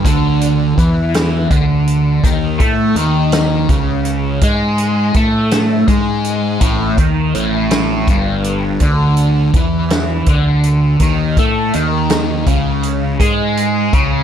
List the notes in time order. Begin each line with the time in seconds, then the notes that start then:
0.05 D2 D3, kick, closed hi-hat
0.41 closed hi-hat
0.78 E2 E3, kick, closed hi-hat
1.14 snare, closed hi-hat
1.51 D2 D3, kick, closed hi-hat
1.88 closed hi-hat
2.24 D#2 D#3, kick, closed hi-hat
2.59 A2 A3, kick, closed hi-hat
2.95 D#2 D#3, closed hi-hat
3.32 snare, closed hi-hat
3.69 C#2 C#3, kick, closed hi-hat
4.05 closed hi-hat
4.41 G#2 G#3, kick, closed hi-hat
4.78 closed hi-hat
5.14 A2 A3, kick, closed hi-hat
5.51 snare, closed hi-hat
5.87 G#2 G#3, kick, closed hi-hat
6.25 closed hi-hat
6.61 A1 A2, kick, closed hi-hat
6.98 D#2 D#3, kick, closed hi-hat
7.35 A1 A2, closed hi-hat
7.71 snare, closed hi-hat
8.07 G1 G2, kick, closed hi-hat
8.44 closed hi-hat
8.80 D2 D3, kick, closed hi-hat
9.17 closed hi-hat
9.54 E2 E3, kick, closed hi-hat
9.90 snare, closed hi-hat
10.26 D2 D3, kick, closed hi-hat
10.63 closed hi-hat
11.00 D#2 D#3, kick, closed hi-hat
11.37 A2 A3, kick, closed hi-hat
11.73 D#2 D#3, closed hi-hat
12.10 snare, closed hi-hat
12.46 C#2 C#3, kick, closed hi-hat
12.83 closed hi-hat
13.20 G#2 G#3, kick, closed hi-hat
13.57 closed hi-hat
13.93 C#2 C#3, kick, closed hi-hat